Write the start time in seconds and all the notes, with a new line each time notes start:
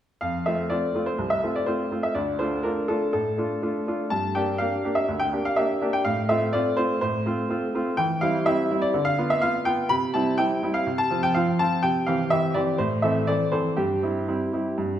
0.21 F2 F5
0.46 A3 C4 F4 E5
0.70 A3 C4 F4 D5
0.95 A3 C4 F4
1.06 C5
1.18 C2
1.30 E5
1.43 A3 C4 F4
1.56 D5
1.66 A3 C4 F4 C5
1.91 A3 C4 F4
2.03 E5
2.15 D2 D5
2.39 A3 D4 F4 C5
2.63 A3 D4 F4 A#4
2.88 A3 D4 F4 A4
3.13 A2 A4
3.38 A3 D4 F4
3.62 A3 D4 F4
3.87 A3 D4 F4
4.10 G2 A5
4.35 A#3 D4 G4 G5
4.58 A#3 D4 G4 F5
4.84 A#3 D4 G4
4.95 E5
5.08 D2
5.20 G5
5.33 A#3 D4 G4
5.45 F5
5.56 A#3 D4 G4 E5
5.82 A#3 D4 G4
5.93 G5
6.05 A2 F5
6.29 A3 C4 F4 E5
6.53 A3 C4 F4 D5
6.77 A3 C4 F4 C5
7.01 A2 C5
7.26 A3 C4 F4
7.49 A3 C4 F4
7.75 A3 C4 F4
7.97 E3 G5
8.21 G3 C4 E4 F5
8.46 G3 C4 E4 E5
8.71 G3 C4 E4
8.82 D5
8.94 D3
9.05 F5
9.18 B3 F4
9.30 E5
9.42 B3 F4 F5
9.65 B3 F4 G5
9.89 C3 B5
10.14 G3 C4 E4 A5
10.38 G3 C4 E4 G5
10.63 G3 C4 E4
10.74 F5
10.87 C3
10.98 A5
11.10 F3 C4 F4
11.23 G5
11.34 F3 C4 F4 F5
11.59 F3 C4 F4 A5
11.83 C3 G5
12.06 E3 C4 G4 F5
12.30 E3 C4 G4 E5
12.54 E3 C4 G4 D5
12.78 A2 C5
13.02 E3 C4 A4 E5
13.27 E3 C4 A4 D5
13.52 E3 C4 A4 C5
13.77 G2 G4
14.03 G3 C4 E4
14.28 G3 C4 E4
14.53 G3 C4 E4
14.78 G2